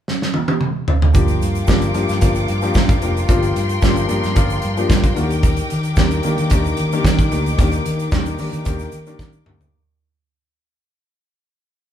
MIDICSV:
0, 0, Header, 1, 5, 480
1, 0, Start_track
1, 0, Key_signature, -2, "minor"
1, 0, Tempo, 537153
1, 1018, Time_signature, 4, 2, 24, 8
1, 10657, End_track
2, 0, Start_track
2, 0, Title_t, "String section"
2, 0, Program_c, 0, 48
2, 1005, Note_on_c, 0, 65, 77
2, 1006, Note_on_c, 0, 79, 71
2, 1015, Note_on_c, 0, 70, 61
2, 1015, Note_on_c, 0, 86, 75
2, 2920, Note_off_c, 0, 86, 0
2, 2923, Note_on_c, 0, 84, 83
2, 4577, Note_off_c, 0, 65, 0
2, 4593, Note_off_c, 0, 84, 0
2, 4607, Note_on_c, 0, 51, 69
2, 4610, Note_on_c, 0, 86, 75
2, 8651, Note_off_c, 0, 51, 0
2, 8651, Note_off_c, 0, 79, 0
2, 8652, Note_off_c, 0, 86, 0
2, 8656, Note_off_c, 0, 70, 0
2, 10657, End_track
3, 0, Start_track
3, 0, Title_t, "Grand piano"
3, 0, Program_c, 1, 0
3, 1014, Note_on_c, 1, 53, 79
3, 1018, Note_on_c, 1, 62, 73
3, 1019, Note_on_c, 1, 58, 73
3, 1023, Note_on_c, 1, 67, 91
3, 1183, Control_c, 1, 64, 127
3, 1378, Note_off_c, 1, 53, 0
3, 1380, Note_off_c, 1, 58, 0
3, 1380, Note_off_c, 1, 62, 0
3, 1382, Note_off_c, 1, 67, 0
3, 1492, Note_on_c, 1, 53, 85
3, 1501, Note_on_c, 1, 58, 72
3, 1503, Note_on_c, 1, 62, 82
3, 1506, Note_on_c, 1, 67, 95
3, 1677, Note_off_c, 1, 53, 0
3, 1681, Note_off_c, 1, 58, 0
3, 1682, Note_off_c, 1, 62, 0
3, 1683, Note_off_c, 1, 67, 0
3, 1734, Note_on_c, 1, 53, 75
3, 1737, Note_on_c, 1, 58, 73
3, 1743, Note_on_c, 1, 62, 68
3, 1749, Note_on_c, 1, 67, 93
3, 1918, Note_off_c, 1, 53, 0
3, 1919, Note_off_c, 1, 58, 0
3, 1922, Note_off_c, 1, 62, 0
3, 1925, Note_off_c, 1, 67, 0
3, 1975, Note_on_c, 1, 53, 78
3, 1982, Note_on_c, 1, 58, 69
3, 1988, Note_on_c, 1, 62, 81
3, 1990, Note_on_c, 1, 67, 88
3, 2245, Note_off_c, 1, 53, 0
3, 2248, Note_off_c, 1, 58, 0
3, 2251, Note_off_c, 1, 62, 0
3, 2252, Note_off_c, 1, 67, 0
3, 2342, Note_on_c, 1, 53, 86
3, 2348, Note_on_c, 1, 58, 72
3, 2353, Note_on_c, 1, 67, 91
3, 2355, Note_on_c, 1, 62, 74
3, 2609, Note_off_c, 1, 53, 0
3, 2612, Note_off_c, 1, 58, 0
3, 2614, Note_off_c, 1, 67, 0
3, 2615, Note_off_c, 1, 62, 0
3, 2698, Note_on_c, 1, 53, 65
3, 2706, Note_on_c, 1, 58, 71
3, 2710, Note_on_c, 1, 62, 63
3, 2710, Note_on_c, 1, 67, 78
3, 2880, Note_off_c, 1, 53, 0
3, 2884, Note_off_c, 1, 58, 0
3, 2886, Note_off_c, 1, 62, 0
3, 2886, Note_off_c, 1, 67, 0
3, 2932, Note_on_c, 1, 53, 80
3, 2933, Note_on_c, 1, 58, 68
3, 2937, Note_on_c, 1, 62, 76
3, 2941, Note_on_c, 1, 65, 74
3, 2997, Note_on_c, 1, 67, 85
3, 3002, Note_off_c, 1, 65, 0
3, 3297, Note_off_c, 1, 53, 0
3, 3298, Note_off_c, 1, 58, 0
3, 3299, Note_off_c, 1, 62, 0
3, 3330, Note_off_c, 1, 67, 0
3, 3411, Note_on_c, 1, 53, 82
3, 3413, Note_on_c, 1, 58, 73
3, 3418, Note_on_c, 1, 62, 81
3, 3424, Note_on_c, 1, 67, 92
3, 3596, Note_off_c, 1, 53, 0
3, 3597, Note_off_c, 1, 58, 0
3, 3600, Note_off_c, 1, 62, 0
3, 3603, Note_off_c, 1, 67, 0
3, 3643, Note_on_c, 1, 53, 87
3, 3647, Note_on_c, 1, 58, 75
3, 3652, Note_on_c, 1, 62, 79
3, 3653, Note_on_c, 1, 67, 89
3, 3832, Note_off_c, 1, 53, 0
3, 3834, Note_off_c, 1, 58, 0
3, 3836, Note_off_c, 1, 62, 0
3, 3837, Note_off_c, 1, 67, 0
3, 3886, Note_on_c, 1, 53, 83
3, 3891, Note_on_c, 1, 58, 72
3, 3894, Note_on_c, 1, 62, 74
3, 3897, Note_on_c, 1, 65, 87
3, 4160, Note_off_c, 1, 53, 0
3, 4162, Note_off_c, 1, 58, 0
3, 4164, Note_off_c, 1, 62, 0
3, 4165, Note_off_c, 1, 65, 0
3, 4263, Note_on_c, 1, 53, 85
3, 4267, Note_on_c, 1, 58, 75
3, 4275, Note_on_c, 1, 62, 77
3, 4281, Note_on_c, 1, 67, 89
3, 4528, Note_off_c, 1, 53, 0
3, 4530, Note_off_c, 1, 58, 0
3, 4534, Note_off_c, 1, 62, 0
3, 4537, Note_off_c, 1, 67, 0
3, 4608, Note_on_c, 1, 51, 82
3, 4613, Note_on_c, 1, 58, 68
3, 4618, Note_on_c, 1, 62, 73
3, 4625, Note_on_c, 1, 66, 66
3, 4629, Control_c, 1, 64, 0
3, 4677, Note_on_c, 1, 67, 90
3, 4683, Note_off_c, 1, 66, 0
3, 4768, Control_c, 1, 64, 127
3, 5194, Note_off_c, 1, 51, 0
3, 5196, Note_off_c, 1, 58, 0
3, 5199, Note_off_c, 1, 62, 0
3, 5229, Note_off_c, 1, 67, 0
3, 5334, Note_on_c, 1, 51, 79
3, 5340, Note_on_c, 1, 58, 76
3, 5345, Note_on_c, 1, 62, 76
3, 5348, Note_on_c, 1, 67, 91
3, 5516, Note_off_c, 1, 51, 0
3, 5519, Note_off_c, 1, 58, 0
3, 5522, Note_off_c, 1, 62, 0
3, 5523, Note_off_c, 1, 67, 0
3, 5571, Note_on_c, 1, 51, 86
3, 5575, Note_on_c, 1, 58, 77
3, 5580, Note_on_c, 1, 62, 76
3, 5584, Note_on_c, 1, 67, 96
3, 5754, Note_off_c, 1, 51, 0
3, 5756, Note_off_c, 1, 58, 0
3, 5759, Note_off_c, 1, 62, 0
3, 5761, Note_off_c, 1, 67, 0
3, 5816, Note_on_c, 1, 51, 75
3, 5819, Note_on_c, 1, 58, 77
3, 5824, Note_on_c, 1, 62, 75
3, 5828, Note_on_c, 1, 67, 90
3, 6083, Note_off_c, 1, 51, 0
3, 6084, Note_off_c, 1, 58, 0
3, 6087, Note_off_c, 1, 62, 0
3, 6089, Note_off_c, 1, 67, 0
3, 6191, Note_on_c, 1, 51, 88
3, 6192, Note_on_c, 1, 58, 76
3, 6193, Note_on_c, 1, 62, 74
3, 6197, Note_on_c, 1, 67, 99
3, 6450, Note_off_c, 1, 51, 0
3, 6451, Note_off_c, 1, 58, 0
3, 6452, Note_off_c, 1, 62, 0
3, 6453, Note_off_c, 1, 67, 0
3, 6535, Note_on_c, 1, 51, 76
3, 6541, Note_on_c, 1, 58, 65
3, 6543, Note_on_c, 1, 62, 61
3, 6548, Note_on_c, 1, 67, 76
3, 6715, Note_off_c, 1, 51, 0
3, 6718, Note_off_c, 1, 58, 0
3, 6720, Note_off_c, 1, 62, 0
3, 6722, Note_off_c, 1, 67, 0
3, 6778, Note_on_c, 1, 51, 87
3, 6783, Note_on_c, 1, 58, 72
3, 6787, Note_on_c, 1, 62, 74
3, 6791, Note_on_c, 1, 67, 93
3, 7137, Note_off_c, 1, 51, 0
3, 7139, Note_off_c, 1, 58, 0
3, 7141, Note_off_c, 1, 62, 0
3, 7143, Note_off_c, 1, 67, 0
3, 7253, Note_on_c, 1, 51, 88
3, 7259, Note_on_c, 1, 58, 76
3, 7261, Note_on_c, 1, 62, 75
3, 7265, Note_on_c, 1, 67, 91
3, 7434, Note_off_c, 1, 51, 0
3, 7437, Note_off_c, 1, 58, 0
3, 7438, Note_off_c, 1, 62, 0
3, 7440, Note_off_c, 1, 67, 0
3, 7495, Note_on_c, 1, 51, 75
3, 7502, Note_on_c, 1, 58, 80
3, 7505, Note_on_c, 1, 62, 73
3, 7508, Note_on_c, 1, 67, 86
3, 7675, Note_off_c, 1, 51, 0
3, 7678, Note_off_c, 1, 58, 0
3, 7680, Note_off_c, 1, 62, 0
3, 7681, Note_off_c, 1, 67, 0
3, 7729, Note_on_c, 1, 51, 81
3, 7734, Note_on_c, 1, 58, 76
3, 7741, Note_on_c, 1, 62, 69
3, 7745, Note_on_c, 1, 67, 92
3, 7998, Note_off_c, 1, 51, 0
3, 8000, Note_off_c, 1, 58, 0
3, 8004, Note_off_c, 1, 62, 0
3, 8006, Note_off_c, 1, 67, 0
3, 8105, Note_on_c, 1, 51, 82
3, 8107, Note_on_c, 1, 58, 74
3, 8114, Note_on_c, 1, 62, 79
3, 8117, Note_on_c, 1, 67, 90
3, 8366, Note_off_c, 1, 51, 0
3, 8367, Note_off_c, 1, 58, 0
3, 8371, Note_off_c, 1, 62, 0
3, 8372, Note_off_c, 1, 67, 0
3, 8451, Note_on_c, 1, 51, 81
3, 8453, Note_on_c, 1, 58, 64
3, 8456, Note_on_c, 1, 62, 70
3, 8465, Note_on_c, 1, 67, 82
3, 8633, Note_off_c, 1, 51, 0
3, 8634, Note_off_c, 1, 58, 0
3, 8635, Note_off_c, 1, 62, 0
3, 8639, Note_off_c, 1, 67, 0
3, 8704, Control_c, 1, 64, 0
3, 10657, End_track
4, 0, Start_track
4, 0, Title_t, "Fingered electric bass"
4, 0, Program_c, 2, 33
4, 1027, Note_on_c, 2, 31, 93
4, 1215, Note_off_c, 2, 31, 0
4, 1264, Note_on_c, 2, 43, 87
4, 1454, Note_off_c, 2, 43, 0
4, 1507, Note_on_c, 2, 31, 94
4, 1695, Note_off_c, 2, 31, 0
4, 1739, Note_on_c, 2, 43, 87
4, 1841, Note_off_c, 2, 43, 0
4, 1868, Note_on_c, 2, 43, 87
4, 1958, Note_off_c, 2, 43, 0
4, 1987, Note_on_c, 2, 31, 89
4, 2175, Note_off_c, 2, 31, 0
4, 2227, Note_on_c, 2, 43, 83
4, 2415, Note_off_c, 2, 43, 0
4, 2464, Note_on_c, 2, 43, 104
4, 2654, Note_off_c, 2, 43, 0
4, 2705, Note_on_c, 2, 29, 94
4, 2894, Note_off_c, 2, 29, 0
4, 2942, Note_on_c, 2, 31, 104
4, 3133, Note_off_c, 2, 31, 0
4, 3182, Note_on_c, 2, 43, 88
4, 3372, Note_off_c, 2, 43, 0
4, 3420, Note_on_c, 2, 31, 91
4, 3611, Note_off_c, 2, 31, 0
4, 3666, Note_on_c, 2, 43, 82
4, 3764, Note_off_c, 2, 43, 0
4, 3790, Note_on_c, 2, 43, 86
4, 3878, Note_off_c, 2, 43, 0
4, 3900, Note_on_c, 2, 31, 85
4, 4091, Note_off_c, 2, 31, 0
4, 4145, Note_on_c, 2, 43, 97
4, 4334, Note_off_c, 2, 43, 0
4, 4379, Note_on_c, 2, 43, 110
4, 4570, Note_off_c, 2, 43, 0
4, 4631, Note_on_c, 2, 39, 107
4, 5007, Note_off_c, 2, 39, 0
4, 5113, Note_on_c, 2, 51, 83
4, 5297, Note_off_c, 2, 51, 0
4, 5335, Note_on_c, 2, 39, 101
4, 5527, Note_off_c, 2, 39, 0
4, 5584, Note_on_c, 2, 51, 92
4, 5682, Note_off_c, 2, 51, 0
4, 5713, Note_on_c, 2, 51, 98
4, 5799, Note_off_c, 2, 51, 0
4, 5825, Note_on_c, 2, 39, 87
4, 6012, Note_off_c, 2, 39, 0
4, 6073, Note_on_c, 2, 51, 88
4, 6257, Note_off_c, 2, 51, 0
4, 6295, Note_on_c, 2, 51, 91
4, 6486, Note_off_c, 2, 51, 0
4, 6539, Note_on_c, 2, 38, 93
4, 6728, Note_off_c, 2, 38, 0
4, 6783, Note_on_c, 2, 39, 94
4, 6971, Note_off_c, 2, 39, 0
4, 7023, Note_on_c, 2, 51, 86
4, 7210, Note_off_c, 2, 51, 0
4, 7259, Note_on_c, 2, 39, 95
4, 7448, Note_off_c, 2, 39, 0
4, 7498, Note_on_c, 2, 51, 85
4, 7597, Note_off_c, 2, 51, 0
4, 7623, Note_on_c, 2, 51, 94
4, 7711, Note_off_c, 2, 51, 0
4, 7744, Note_on_c, 2, 39, 77
4, 7930, Note_off_c, 2, 39, 0
4, 7980, Note_on_c, 2, 51, 83
4, 8168, Note_off_c, 2, 51, 0
4, 8215, Note_on_c, 2, 51, 98
4, 8405, Note_off_c, 2, 51, 0
4, 8454, Note_on_c, 2, 38, 80
4, 8644, Note_off_c, 2, 38, 0
4, 10657, End_track
5, 0, Start_track
5, 0, Title_t, "Drums"
5, 73, Note_on_c, 9, 38, 64
5, 162, Note_off_c, 9, 38, 0
5, 199, Note_on_c, 9, 38, 70
5, 289, Note_off_c, 9, 38, 0
5, 302, Note_on_c, 9, 48, 70
5, 391, Note_off_c, 9, 48, 0
5, 430, Note_on_c, 9, 48, 80
5, 519, Note_off_c, 9, 48, 0
5, 542, Note_on_c, 9, 47, 82
5, 631, Note_off_c, 9, 47, 0
5, 784, Note_on_c, 9, 43, 98
5, 874, Note_off_c, 9, 43, 0
5, 914, Note_on_c, 9, 43, 104
5, 1004, Note_off_c, 9, 43, 0
5, 1022, Note_on_c, 9, 82, 72
5, 1025, Note_on_c, 9, 36, 103
5, 1026, Note_on_c, 9, 42, 74
5, 1111, Note_off_c, 9, 82, 0
5, 1115, Note_off_c, 9, 36, 0
5, 1116, Note_off_c, 9, 42, 0
5, 1142, Note_on_c, 9, 82, 50
5, 1145, Note_on_c, 9, 42, 49
5, 1231, Note_off_c, 9, 82, 0
5, 1234, Note_off_c, 9, 42, 0
5, 1267, Note_on_c, 9, 82, 57
5, 1274, Note_on_c, 9, 42, 62
5, 1357, Note_off_c, 9, 82, 0
5, 1363, Note_off_c, 9, 42, 0
5, 1385, Note_on_c, 9, 42, 43
5, 1390, Note_on_c, 9, 82, 51
5, 1474, Note_off_c, 9, 42, 0
5, 1479, Note_off_c, 9, 82, 0
5, 1492, Note_on_c, 9, 82, 79
5, 1502, Note_on_c, 9, 36, 97
5, 1513, Note_on_c, 9, 38, 109
5, 1582, Note_off_c, 9, 82, 0
5, 1592, Note_off_c, 9, 36, 0
5, 1603, Note_off_c, 9, 38, 0
5, 1621, Note_on_c, 9, 82, 50
5, 1623, Note_on_c, 9, 42, 45
5, 1710, Note_off_c, 9, 82, 0
5, 1713, Note_off_c, 9, 42, 0
5, 1737, Note_on_c, 9, 42, 70
5, 1738, Note_on_c, 9, 82, 57
5, 1826, Note_off_c, 9, 42, 0
5, 1828, Note_off_c, 9, 82, 0
5, 1864, Note_on_c, 9, 82, 51
5, 1870, Note_on_c, 9, 42, 46
5, 1878, Note_on_c, 9, 38, 35
5, 1953, Note_off_c, 9, 82, 0
5, 1959, Note_off_c, 9, 42, 0
5, 1967, Note_off_c, 9, 38, 0
5, 1976, Note_on_c, 9, 42, 87
5, 1978, Note_on_c, 9, 82, 83
5, 1985, Note_on_c, 9, 36, 88
5, 2066, Note_off_c, 9, 42, 0
5, 2068, Note_off_c, 9, 82, 0
5, 2074, Note_off_c, 9, 36, 0
5, 2099, Note_on_c, 9, 82, 52
5, 2108, Note_on_c, 9, 42, 37
5, 2188, Note_off_c, 9, 82, 0
5, 2197, Note_off_c, 9, 42, 0
5, 2218, Note_on_c, 9, 42, 57
5, 2308, Note_off_c, 9, 42, 0
5, 2337, Note_on_c, 9, 82, 51
5, 2353, Note_on_c, 9, 42, 53
5, 2427, Note_off_c, 9, 82, 0
5, 2443, Note_off_c, 9, 42, 0
5, 2451, Note_on_c, 9, 82, 83
5, 2459, Note_on_c, 9, 36, 99
5, 2469, Note_on_c, 9, 38, 109
5, 2540, Note_off_c, 9, 82, 0
5, 2548, Note_off_c, 9, 36, 0
5, 2558, Note_off_c, 9, 38, 0
5, 2577, Note_on_c, 9, 82, 49
5, 2583, Note_on_c, 9, 36, 108
5, 2583, Note_on_c, 9, 42, 48
5, 2666, Note_off_c, 9, 82, 0
5, 2672, Note_off_c, 9, 36, 0
5, 2673, Note_off_c, 9, 42, 0
5, 2697, Note_on_c, 9, 42, 59
5, 2697, Note_on_c, 9, 82, 49
5, 2786, Note_off_c, 9, 42, 0
5, 2786, Note_off_c, 9, 82, 0
5, 2831, Note_on_c, 9, 42, 42
5, 2834, Note_on_c, 9, 82, 56
5, 2920, Note_off_c, 9, 42, 0
5, 2924, Note_off_c, 9, 82, 0
5, 2936, Note_on_c, 9, 42, 70
5, 2939, Note_on_c, 9, 36, 108
5, 2941, Note_on_c, 9, 82, 71
5, 3025, Note_off_c, 9, 42, 0
5, 3028, Note_off_c, 9, 36, 0
5, 3030, Note_off_c, 9, 82, 0
5, 3062, Note_on_c, 9, 42, 47
5, 3069, Note_on_c, 9, 82, 46
5, 3151, Note_off_c, 9, 42, 0
5, 3158, Note_off_c, 9, 82, 0
5, 3183, Note_on_c, 9, 42, 72
5, 3185, Note_on_c, 9, 82, 51
5, 3273, Note_off_c, 9, 42, 0
5, 3274, Note_off_c, 9, 82, 0
5, 3299, Note_on_c, 9, 42, 43
5, 3308, Note_on_c, 9, 82, 47
5, 3389, Note_off_c, 9, 42, 0
5, 3397, Note_off_c, 9, 82, 0
5, 3411, Note_on_c, 9, 82, 75
5, 3418, Note_on_c, 9, 36, 98
5, 3428, Note_on_c, 9, 38, 105
5, 3500, Note_off_c, 9, 82, 0
5, 3507, Note_off_c, 9, 36, 0
5, 3518, Note_off_c, 9, 38, 0
5, 3537, Note_on_c, 9, 42, 40
5, 3542, Note_on_c, 9, 82, 53
5, 3626, Note_off_c, 9, 42, 0
5, 3632, Note_off_c, 9, 82, 0
5, 3653, Note_on_c, 9, 42, 65
5, 3663, Note_on_c, 9, 82, 58
5, 3742, Note_off_c, 9, 42, 0
5, 3752, Note_off_c, 9, 82, 0
5, 3784, Note_on_c, 9, 42, 44
5, 3787, Note_on_c, 9, 82, 53
5, 3792, Note_on_c, 9, 38, 36
5, 3873, Note_off_c, 9, 42, 0
5, 3876, Note_off_c, 9, 82, 0
5, 3881, Note_off_c, 9, 38, 0
5, 3894, Note_on_c, 9, 42, 82
5, 3898, Note_on_c, 9, 82, 76
5, 3901, Note_on_c, 9, 36, 97
5, 3984, Note_off_c, 9, 42, 0
5, 3987, Note_off_c, 9, 82, 0
5, 3990, Note_off_c, 9, 36, 0
5, 4019, Note_on_c, 9, 82, 54
5, 4023, Note_on_c, 9, 42, 34
5, 4108, Note_off_c, 9, 82, 0
5, 4113, Note_off_c, 9, 42, 0
5, 4126, Note_on_c, 9, 42, 64
5, 4215, Note_off_c, 9, 42, 0
5, 4265, Note_on_c, 9, 82, 49
5, 4266, Note_on_c, 9, 42, 45
5, 4354, Note_off_c, 9, 82, 0
5, 4355, Note_off_c, 9, 42, 0
5, 4376, Note_on_c, 9, 36, 111
5, 4379, Note_on_c, 9, 82, 75
5, 4384, Note_on_c, 9, 38, 113
5, 4465, Note_off_c, 9, 36, 0
5, 4469, Note_off_c, 9, 82, 0
5, 4474, Note_off_c, 9, 38, 0
5, 4499, Note_on_c, 9, 82, 54
5, 4500, Note_on_c, 9, 36, 102
5, 4502, Note_on_c, 9, 42, 52
5, 4588, Note_off_c, 9, 82, 0
5, 4590, Note_off_c, 9, 36, 0
5, 4592, Note_off_c, 9, 42, 0
5, 4614, Note_on_c, 9, 42, 58
5, 4617, Note_on_c, 9, 82, 51
5, 4704, Note_off_c, 9, 42, 0
5, 4707, Note_off_c, 9, 82, 0
5, 4740, Note_on_c, 9, 42, 43
5, 4751, Note_on_c, 9, 82, 54
5, 4829, Note_off_c, 9, 42, 0
5, 4840, Note_off_c, 9, 82, 0
5, 4850, Note_on_c, 9, 42, 74
5, 4855, Note_on_c, 9, 36, 106
5, 4859, Note_on_c, 9, 82, 76
5, 4940, Note_off_c, 9, 42, 0
5, 4944, Note_off_c, 9, 36, 0
5, 4949, Note_off_c, 9, 82, 0
5, 4973, Note_on_c, 9, 42, 50
5, 4986, Note_on_c, 9, 82, 48
5, 5063, Note_off_c, 9, 42, 0
5, 5075, Note_off_c, 9, 82, 0
5, 5095, Note_on_c, 9, 42, 65
5, 5105, Note_on_c, 9, 82, 47
5, 5184, Note_off_c, 9, 42, 0
5, 5195, Note_off_c, 9, 82, 0
5, 5212, Note_on_c, 9, 42, 41
5, 5221, Note_on_c, 9, 82, 50
5, 5301, Note_off_c, 9, 42, 0
5, 5311, Note_off_c, 9, 82, 0
5, 5326, Note_on_c, 9, 82, 76
5, 5335, Note_on_c, 9, 36, 101
5, 5340, Note_on_c, 9, 38, 97
5, 5415, Note_off_c, 9, 82, 0
5, 5424, Note_off_c, 9, 36, 0
5, 5429, Note_off_c, 9, 38, 0
5, 5458, Note_on_c, 9, 42, 45
5, 5463, Note_on_c, 9, 82, 51
5, 5547, Note_off_c, 9, 42, 0
5, 5552, Note_off_c, 9, 82, 0
5, 5568, Note_on_c, 9, 42, 70
5, 5586, Note_on_c, 9, 82, 53
5, 5657, Note_off_c, 9, 42, 0
5, 5675, Note_off_c, 9, 82, 0
5, 5699, Note_on_c, 9, 42, 44
5, 5707, Note_on_c, 9, 82, 48
5, 5789, Note_off_c, 9, 42, 0
5, 5797, Note_off_c, 9, 82, 0
5, 5807, Note_on_c, 9, 42, 83
5, 5819, Note_on_c, 9, 36, 98
5, 5822, Note_on_c, 9, 82, 87
5, 5896, Note_off_c, 9, 42, 0
5, 5908, Note_off_c, 9, 36, 0
5, 5911, Note_off_c, 9, 82, 0
5, 5936, Note_on_c, 9, 42, 33
5, 5954, Note_on_c, 9, 82, 52
5, 6025, Note_off_c, 9, 42, 0
5, 6043, Note_off_c, 9, 82, 0
5, 6047, Note_on_c, 9, 42, 63
5, 6137, Note_off_c, 9, 42, 0
5, 6184, Note_on_c, 9, 82, 56
5, 6189, Note_on_c, 9, 42, 47
5, 6274, Note_off_c, 9, 82, 0
5, 6278, Note_off_c, 9, 42, 0
5, 6295, Note_on_c, 9, 36, 110
5, 6301, Note_on_c, 9, 38, 112
5, 6308, Note_on_c, 9, 82, 88
5, 6385, Note_off_c, 9, 36, 0
5, 6390, Note_off_c, 9, 38, 0
5, 6397, Note_off_c, 9, 82, 0
5, 6421, Note_on_c, 9, 36, 96
5, 6425, Note_on_c, 9, 42, 47
5, 6425, Note_on_c, 9, 82, 57
5, 6511, Note_off_c, 9, 36, 0
5, 6514, Note_off_c, 9, 82, 0
5, 6515, Note_off_c, 9, 42, 0
5, 6538, Note_on_c, 9, 82, 49
5, 6539, Note_on_c, 9, 42, 59
5, 6628, Note_off_c, 9, 82, 0
5, 6629, Note_off_c, 9, 42, 0
5, 6667, Note_on_c, 9, 42, 43
5, 6674, Note_on_c, 9, 82, 53
5, 6756, Note_off_c, 9, 42, 0
5, 6764, Note_off_c, 9, 82, 0
5, 6779, Note_on_c, 9, 36, 106
5, 6779, Note_on_c, 9, 42, 79
5, 6785, Note_on_c, 9, 82, 63
5, 6868, Note_off_c, 9, 36, 0
5, 6869, Note_off_c, 9, 42, 0
5, 6874, Note_off_c, 9, 82, 0
5, 6896, Note_on_c, 9, 42, 47
5, 6902, Note_on_c, 9, 82, 49
5, 6985, Note_off_c, 9, 42, 0
5, 6992, Note_off_c, 9, 82, 0
5, 7019, Note_on_c, 9, 82, 48
5, 7020, Note_on_c, 9, 42, 68
5, 7109, Note_off_c, 9, 82, 0
5, 7110, Note_off_c, 9, 42, 0
5, 7143, Note_on_c, 9, 42, 43
5, 7145, Note_on_c, 9, 82, 49
5, 7232, Note_off_c, 9, 42, 0
5, 7234, Note_off_c, 9, 82, 0
5, 7252, Note_on_c, 9, 82, 68
5, 7258, Note_on_c, 9, 36, 112
5, 7267, Note_on_c, 9, 38, 105
5, 7341, Note_off_c, 9, 82, 0
5, 7347, Note_off_c, 9, 36, 0
5, 7356, Note_off_c, 9, 38, 0
5, 7377, Note_on_c, 9, 82, 53
5, 7384, Note_on_c, 9, 42, 46
5, 7467, Note_off_c, 9, 82, 0
5, 7474, Note_off_c, 9, 42, 0
5, 7492, Note_on_c, 9, 82, 56
5, 7495, Note_on_c, 9, 46, 75
5, 7581, Note_off_c, 9, 82, 0
5, 7585, Note_off_c, 9, 46, 0
5, 7622, Note_on_c, 9, 82, 49
5, 7630, Note_on_c, 9, 42, 47
5, 7711, Note_off_c, 9, 82, 0
5, 7719, Note_off_c, 9, 42, 0
5, 7732, Note_on_c, 9, 42, 84
5, 7733, Note_on_c, 9, 82, 83
5, 7741, Note_on_c, 9, 36, 92
5, 7821, Note_off_c, 9, 42, 0
5, 7822, Note_off_c, 9, 82, 0
5, 7831, Note_off_c, 9, 36, 0
5, 7856, Note_on_c, 9, 82, 57
5, 7869, Note_on_c, 9, 42, 35
5, 7946, Note_off_c, 9, 82, 0
5, 7958, Note_off_c, 9, 42, 0
5, 7969, Note_on_c, 9, 82, 54
5, 7971, Note_on_c, 9, 42, 59
5, 8058, Note_off_c, 9, 82, 0
5, 8061, Note_off_c, 9, 42, 0
5, 8098, Note_on_c, 9, 82, 52
5, 8106, Note_on_c, 9, 42, 46
5, 8187, Note_off_c, 9, 82, 0
5, 8196, Note_off_c, 9, 42, 0
5, 8214, Note_on_c, 9, 36, 110
5, 8216, Note_on_c, 9, 82, 75
5, 8223, Note_on_c, 9, 38, 52
5, 8303, Note_off_c, 9, 36, 0
5, 8305, Note_off_c, 9, 82, 0
5, 8313, Note_off_c, 9, 38, 0
5, 8334, Note_on_c, 9, 82, 51
5, 8423, Note_off_c, 9, 82, 0
5, 8455, Note_on_c, 9, 45, 84
5, 8544, Note_off_c, 9, 45, 0
5, 8586, Note_on_c, 9, 43, 82
5, 8589, Note_on_c, 9, 82, 60
5, 8675, Note_off_c, 9, 43, 0
5, 8678, Note_off_c, 9, 82, 0
5, 10657, End_track
0, 0, End_of_file